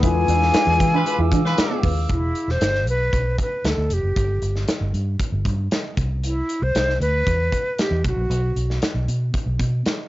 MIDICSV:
0, 0, Header, 1, 9, 480
1, 0, Start_track
1, 0, Tempo, 517241
1, 31, Time_signature, 4, 2, 24, 8
1, 9356, End_track
2, 0, Start_track
2, 0, Title_t, "Glass harmonica"
2, 0, Program_c, 0, 92
2, 28, Note_on_c, 0, 88, 73
2, 31, Note_on_c, 0, 77, 64
2, 31, Note_on_c, 0, 86, 64
2, 32, Note_on_c, 0, 68, 67
2, 1926, Note_off_c, 0, 88, 0
2, 1928, Note_off_c, 0, 68, 0
2, 1928, Note_off_c, 0, 77, 0
2, 1928, Note_off_c, 0, 86, 0
2, 9356, End_track
3, 0, Start_track
3, 0, Title_t, "Flute"
3, 0, Program_c, 1, 73
3, 47, Note_on_c, 1, 80, 124
3, 1438, Note_off_c, 1, 80, 0
3, 1967, Note_on_c, 1, 64, 80
3, 2329, Note_on_c, 1, 72, 95
3, 2343, Note_off_c, 1, 64, 0
3, 2677, Note_off_c, 1, 72, 0
3, 2690, Note_on_c, 1, 71, 95
3, 3125, Note_off_c, 1, 71, 0
3, 3171, Note_on_c, 1, 71, 81
3, 3407, Note_on_c, 1, 69, 80
3, 3421, Note_off_c, 1, 71, 0
3, 3649, Note_on_c, 1, 67, 82
3, 3663, Note_off_c, 1, 69, 0
3, 4358, Note_off_c, 1, 67, 0
3, 5802, Note_on_c, 1, 64, 82
3, 6152, Note_on_c, 1, 72, 98
3, 6166, Note_off_c, 1, 64, 0
3, 6504, Note_off_c, 1, 72, 0
3, 6510, Note_on_c, 1, 71, 109
3, 7245, Note_on_c, 1, 67, 83
3, 7259, Note_off_c, 1, 71, 0
3, 7477, Note_off_c, 1, 67, 0
3, 7492, Note_on_c, 1, 66, 84
3, 8163, Note_off_c, 1, 66, 0
3, 9356, End_track
4, 0, Start_track
4, 0, Title_t, "Horn section"
4, 0, Program_c, 2, 61
4, 872, Note_on_c, 2, 56, 93
4, 875, Note_on_c, 2, 71, 97
4, 876, Note_on_c, 2, 65, 91
4, 947, Note_off_c, 2, 56, 0
4, 950, Note_off_c, 2, 65, 0
4, 950, Note_off_c, 2, 71, 0
4, 990, Note_on_c, 2, 71, 94
4, 991, Note_on_c, 2, 65, 86
4, 992, Note_on_c, 2, 56, 80
4, 1091, Note_off_c, 2, 71, 0
4, 1092, Note_off_c, 2, 56, 0
4, 1092, Note_off_c, 2, 65, 0
4, 1348, Note_on_c, 2, 56, 95
4, 1348, Note_on_c, 2, 65, 86
4, 1349, Note_on_c, 2, 71, 99
4, 1689, Note_off_c, 2, 56, 0
4, 1689, Note_off_c, 2, 65, 0
4, 1690, Note_off_c, 2, 71, 0
4, 9356, End_track
5, 0, Start_track
5, 0, Title_t, "Tine electric piano"
5, 0, Program_c, 3, 4
5, 0, Control_c, 3, 64, 127
5, 22, Note_on_c, 3, 56, 68
5, 26, Note_on_c, 3, 62, 62
5, 33, Note_on_c, 3, 64, 58
5, 39, Note_on_c, 3, 65, 63
5, 43, Control_c, 3, 64, 0
5, 43, Note_on_c, 3, 71, 76
5, 227, Control_c, 3, 64, 127
5, 1905, Note_off_c, 3, 56, 0
5, 1907, Note_off_c, 3, 62, 0
5, 1910, Note_off_c, 3, 64, 0
5, 1913, Note_off_c, 3, 65, 0
5, 1916, Note_off_c, 3, 71, 0
5, 1958, Control_c, 3, 64, 0
5, 9356, End_track
6, 0, Start_track
6, 0, Title_t, "Clean electric guitar"
6, 0, Program_c, 4, 27
6, 30, Note_on_c, 4, 64, 80
6, 102, Note_off_c, 4, 64, 0
6, 272, Note_on_c, 4, 62, 80
6, 342, Note_off_c, 4, 62, 0
6, 515, Note_on_c, 4, 64, 81
6, 585, Note_off_c, 4, 64, 0
6, 871, Note_on_c, 4, 62, 69
6, 941, Note_off_c, 4, 62, 0
6, 1109, Note_on_c, 4, 64, 79
6, 1180, Note_off_c, 4, 64, 0
6, 1227, Note_on_c, 4, 62, 78
6, 1298, Note_off_c, 4, 62, 0
6, 1583, Note_on_c, 4, 59, 71
6, 1655, Note_off_c, 4, 59, 0
6, 1702, Note_on_c, 4, 59, 81
6, 1775, Note_off_c, 4, 59, 0
6, 9356, End_track
7, 0, Start_track
7, 0, Title_t, "Fingered electric bass"
7, 0, Program_c, 5, 33
7, 25, Note_on_c, 5, 40, 111
7, 227, Note_off_c, 5, 40, 0
7, 261, Note_on_c, 5, 40, 88
7, 464, Note_off_c, 5, 40, 0
7, 619, Note_on_c, 5, 40, 102
7, 723, Note_off_c, 5, 40, 0
7, 744, Note_on_c, 5, 52, 98
7, 946, Note_off_c, 5, 52, 0
7, 1100, Note_on_c, 5, 40, 95
7, 1203, Note_off_c, 5, 40, 0
7, 1220, Note_on_c, 5, 52, 92
7, 1423, Note_off_c, 5, 52, 0
7, 1701, Note_on_c, 5, 39, 89
7, 1903, Note_off_c, 5, 39, 0
7, 1944, Note_on_c, 5, 28, 84
7, 2145, Note_off_c, 5, 28, 0
7, 2299, Note_on_c, 5, 28, 75
7, 2402, Note_off_c, 5, 28, 0
7, 2422, Note_on_c, 5, 31, 68
7, 2658, Note_off_c, 5, 31, 0
7, 2658, Note_on_c, 5, 35, 81
7, 2861, Note_off_c, 5, 35, 0
7, 2905, Note_on_c, 5, 35, 79
7, 3105, Note_off_c, 5, 35, 0
7, 3381, Note_on_c, 5, 38, 75
7, 3483, Note_off_c, 5, 38, 0
7, 3498, Note_on_c, 5, 38, 72
7, 3602, Note_off_c, 5, 38, 0
7, 3618, Note_on_c, 5, 29, 77
7, 3721, Note_off_c, 5, 29, 0
7, 3740, Note_on_c, 5, 30, 73
7, 3842, Note_off_c, 5, 30, 0
7, 3861, Note_on_c, 5, 31, 92
7, 4063, Note_off_c, 5, 31, 0
7, 4100, Note_on_c, 5, 31, 80
7, 4303, Note_off_c, 5, 31, 0
7, 4462, Note_on_c, 5, 31, 83
7, 4564, Note_off_c, 5, 31, 0
7, 4579, Note_on_c, 5, 43, 84
7, 4782, Note_off_c, 5, 43, 0
7, 4939, Note_on_c, 5, 31, 89
7, 5042, Note_off_c, 5, 31, 0
7, 5059, Note_on_c, 5, 43, 88
7, 5263, Note_off_c, 5, 43, 0
7, 5543, Note_on_c, 5, 36, 83
7, 5945, Note_off_c, 5, 36, 0
7, 6143, Note_on_c, 5, 36, 83
7, 6245, Note_off_c, 5, 36, 0
7, 6498, Note_on_c, 5, 38, 82
7, 6702, Note_off_c, 5, 38, 0
7, 6745, Note_on_c, 5, 40, 83
7, 6946, Note_off_c, 5, 40, 0
7, 7338, Note_on_c, 5, 40, 78
7, 7442, Note_off_c, 5, 40, 0
7, 7464, Note_on_c, 5, 35, 90
7, 7566, Note_off_c, 5, 35, 0
7, 7577, Note_on_c, 5, 34, 83
7, 7682, Note_off_c, 5, 34, 0
7, 7701, Note_on_c, 5, 35, 97
7, 7904, Note_off_c, 5, 35, 0
7, 7940, Note_on_c, 5, 35, 78
7, 8143, Note_off_c, 5, 35, 0
7, 8301, Note_on_c, 5, 35, 86
7, 8404, Note_off_c, 5, 35, 0
7, 8424, Note_on_c, 5, 47, 82
7, 8626, Note_off_c, 5, 47, 0
7, 8780, Note_on_c, 5, 35, 75
7, 8884, Note_off_c, 5, 35, 0
7, 8904, Note_on_c, 5, 47, 85
7, 9106, Note_off_c, 5, 47, 0
7, 9356, End_track
8, 0, Start_track
8, 0, Title_t, "Muted clean electric guitar strokes"
8, 153, Note_on_c, 9, 29, 45
8, 245, Note_off_c, 9, 29, 0
8, 749, Note_on_c, 9, 29, 43
8, 842, Note_off_c, 9, 29, 0
8, 989, Note_on_c, 9, 29, 44
8, 1082, Note_off_c, 9, 29, 0
8, 9356, End_track
9, 0, Start_track
9, 0, Title_t, "Drums"
9, 26, Note_on_c, 9, 42, 86
9, 28, Note_on_c, 9, 36, 101
9, 119, Note_off_c, 9, 42, 0
9, 121, Note_off_c, 9, 36, 0
9, 262, Note_on_c, 9, 42, 59
9, 355, Note_off_c, 9, 42, 0
9, 391, Note_on_c, 9, 38, 36
9, 484, Note_off_c, 9, 38, 0
9, 499, Note_on_c, 9, 42, 90
9, 507, Note_on_c, 9, 38, 121
9, 592, Note_off_c, 9, 42, 0
9, 600, Note_off_c, 9, 38, 0
9, 744, Note_on_c, 9, 42, 69
9, 745, Note_on_c, 9, 36, 86
9, 837, Note_off_c, 9, 42, 0
9, 838, Note_off_c, 9, 36, 0
9, 985, Note_on_c, 9, 42, 73
9, 1077, Note_off_c, 9, 42, 0
9, 1222, Note_on_c, 9, 36, 77
9, 1224, Note_on_c, 9, 42, 67
9, 1315, Note_off_c, 9, 36, 0
9, 1317, Note_off_c, 9, 42, 0
9, 1351, Note_on_c, 9, 38, 35
9, 1444, Note_off_c, 9, 38, 0
9, 1463, Note_on_c, 9, 42, 97
9, 1470, Note_on_c, 9, 38, 108
9, 1556, Note_off_c, 9, 42, 0
9, 1563, Note_off_c, 9, 38, 0
9, 1701, Note_on_c, 9, 46, 80
9, 1702, Note_on_c, 9, 36, 88
9, 1794, Note_off_c, 9, 46, 0
9, 1795, Note_off_c, 9, 36, 0
9, 1943, Note_on_c, 9, 42, 70
9, 1944, Note_on_c, 9, 36, 92
9, 2035, Note_off_c, 9, 42, 0
9, 2037, Note_off_c, 9, 36, 0
9, 2182, Note_on_c, 9, 42, 55
9, 2274, Note_off_c, 9, 42, 0
9, 2310, Note_on_c, 9, 38, 31
9, 2403, Note_off_c, 9, 38, 0
9, 2422, Note_on_c, 9, 42, 83
9, 2429, Note_on_c, 9, 38, 102
9, 2514, Note_off_c, 9, 42, 0
9, 2522, Note_off_c, 9, 38, 0
9, 2548, Note_on_c, 9, 38, 29
9, 2641, Note_off_c, 9, 38, 0
9, 2665, Note_on_c, 9, 42, 57
9, 2757, Note_off_c, 9, 42, 0
9, 2903, Note_on_c, 9, 36, 77
9, 2904, Note_on_c, 9, 42, 66
9, 2996, Note_off_c, 9, 36, 0
9, 2997, Note_off_c, 9, 42, 0
9, 3140, Note_on_c, 9, 36, 72
9, 3142, Note_on_c, 9, 42, 60
9, 3233, Note_off_c, 9, 36, 0
9, 3235, Note_off_c, 9, 42, 0
9, 3382, Note_on_c, 9, 42, 80
9, 3388, Note_on_c, 9, 38, 95
9, 3474, Note_off_c, 9, 42, 0
9, 3481, Note_off_c, 9, 38, 0
9, 3620, Note_on_c, 9, 42, 69
9, 3713, Note_off_c, 9, 42, 0
9, 3863, Note_on_c, 9, 36, 91
9, 3864, Note_on_c, 9, 42, 74
9, 3956, Note_off_c, 9, 36, 0
9, 3957, Note_off_c, 9, 42, 0
9, 4101, Note_on_c, 9, 42, 52
9, 4194, Note_off_c, 9, 42, 0
9, 4227, Note_on_c, 9, 38, 32
9, 4320, Note_off_c, 9, 38, 0
9, 4341, Note_on_c, 9, 42, 82
9, 4348, Note_on_c, 9, 38, 99
9, 4433, Note_off_c, 9, 42, 0
9, 4441, Note_off_c, 9, 38, 0
9, 4585, Note_on_c, 9, 42, 54
9, 4678, Note_off_c, 9, 42, 0
9, 4822, Note_on_c, 9, 36, 80
9, 4823, Note_on_c, 9, 42, 68
9, 4915, Note_off_c, 9, 36, 0
9, 4916, Note_off_c, 9, 42, 0
9, 5060, Note_on_c, 9, 36, 72
9, 5065, Note_on_c, 9, 42, 59
9, 5153, Note_off_c, 9, 36, 0
9, 5158, Note_off_c, 9, 42, 0
9, 5303, Note_on_c, 9, 42, 87
9, 5310, Note_on_c, 9, 38, 97
9, 5396, Note_off_c, 9, 42, 0
9, 5403, Note_off_c, 9, 38, 0
9, 5543, Note_on_c, 9, 42, 70
9, 5544, Note_on_c, 9, 36, 87
9, 5636, Note_off_c, 9, 42, 0
9, 5637, Note_off_c, 9, 36, 0
9, 5787, Note_on_c, 9, 42, 73
9, 5880, Note_off_c, 9, 42, 0
9, 6024, Note_on_c, 9, 42, 57
9, 6117, Note_off_c, 9, 42, 0
9, 6264, Note_on_c, 9, 42, 83
9, 6272, Note_on_c, 9, 38, 95
9, 6357, Note_off_c, 9, 42, 0
9, 6365, Note_off_c, 9, 38, 0
9, 6396, Note_on_c, 9, 38, 30
9, 6489, Note_off_c, 9, 38, 0
9, 6509, Note_on_c, 9, 42, 60
9, 6602, Note_off_c, 9, 42, 0
9, 6744, Note_on_c, 9, 36, 85
9, 6747, Note_on_c, 9, 42, 68
9, 6837, Note_off_c, 9, 36, 0
9, 6840, Note_off_c, 9, 42, 0
9, 6982, Note_on_c, 9, 36, 68
9, 6989, Note_on_c, 9, 42, 62
9, 7075, Note_off_c, 9, 36, 0
9, 7081, Note_off_c, 9, 42, 0
9, 7224, Note_on_c, 9, 42, 85
9, 7231, Note_on_c, 9, 38, 93
9, 7317, Note_off_c, 9, 42, 0
9, 7324, Note_off_c, 9, 38, 0
9, 7464, Note_on_c, 9, 42, 69
9, 7465, Note_on_c, 9, 36, 92
9, 7557, Note_off_c, 9, 42, 0
9, 7558, Note_off_c, 9, 36, 0
9, 7709, Note_on_c, 9, 42, 71
9, 7802, Note_off_c, 9, 42, 0
9, 7947, Note_on_c, 9, 42, 56
9, 8040, Note_off_c, 9, 42, 0
9, 8074, Note_on_c, 9, 38, 33
9, 8167, Note_off_c, 9, 38, 0
9, 8184, Note_on_c, 9, 42, 85
9, 8192, Note_on_c, 9, 38, 96
9, 8277, Note_off_c, 9, 42, 0
9, 8285, Note_off_c, 9, 38, 0
9, 8429, Note_on_c, 9, 42, 58
9, 8522, Note_off_c, 9, 42, 0
9, 8667, Note_on_c, 9, 36, 81
9, 8670, Note_on_c, 9, 42, 67
9, 8759, Note_off_c, 9, 36, 0
9, 8763, Note_off_c, 9, 42, 0
9, 8905, Note_on_c, 9, 36, 69
9, 8911, Note_on_c, 9, 42, 61
9, 8997, Note_off_c, 9, 36, 0
9, 9004, Note_off_c, 9, 42, 0
9, 9147, Note_on_c, 9, 42, 84
9, 9154, Note_on_c, 9, 38, 95
9, 9240, Note_off_c, 9, 42, 0
9, 9247, Note_off_c, 9, 38, 0
9, 9356, End_track
0, 0, End_of_file